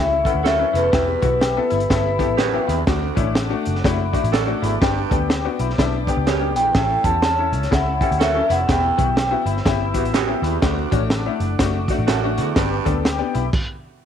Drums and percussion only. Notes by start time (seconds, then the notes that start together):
0.25 kick, closed hi-hat
0.46 snare, closed hi-hat
0.75 closed hi-hat
0.93 kick, snare, closed hi-hat
1.22 kick, closed hi-hat
1.41 snare, closed hi-hat
1.70 closed hi-hat
1.80 closed hi-hat
1.90 kick, snare, closed hi-hat
2.19 kick, closed hi-hat
2.38 snare, closed hi-hat
2.69 closed hi-hat
2.87 kick, snare, closed hi-hat
3.17 kick, closed hi-hat
3.35 snare, closed hi-hat
3.65 closed hi-hat
3.75 snare
3.84 kick, snare, closed hi-hat
4.13 kick, closed hi-hat
4.24 closed hi-hat
4.33 snare, closed hi-hat
4.64 closed hi-hat
4.82 kick, snare, closed hi-hat
5.11 kick, closed hi-hat
5.30 snare, closed hi-hat
5.59 closed hi-hat
5.70 snare
5.78 kick, snare, closed hi-hat
6.07 kick, closed hi-hat
6.27 snare, closed hi-hat
6.56 closed hi-hat
6.75 kick, snare, closed hi-hat
7.04 kick, closed hi-hat
7.22 snare, closed hi-hat
7.53 closed hi-hat
7.63 snare, closed hi-hat
7.72 kick, snare, closed hi-hat
8.01 kick, closed hi-hat
8.12 closed hi-hat
8.21 snare, closed hi-hat
8.50 closed hi-hat
8.69 kick, snare, closed hi-hat
8.99 kick, closed hi-hat
9.17 snare, closed hi-hat
9.46 closed hi-hat
9.57 snare
9.66 kick, snare, closed hi-hat
9.94 kick, closed hi-hat
10.05 closed hi-hat
10.14 snare, closed hi-hat
10.44 closed hi-hat
10.62 kick, snare, closed hi-hat
10.92 kick, closed hi-hat
11.10 snare, closed hi-hat
11.40 closed hi-hat
11.59 kick, snare, closed hi-hat
11.88 kick, closed hi-hat
12.08 snare, closed hi-hat
12.38 closed hi-hat
12.56 kick, snare, closed hi-hat
12.86 kick, closed hi-hat
13.05 snare, closed hi-hat
13.35 closed hi-hat
13.53 kick, crash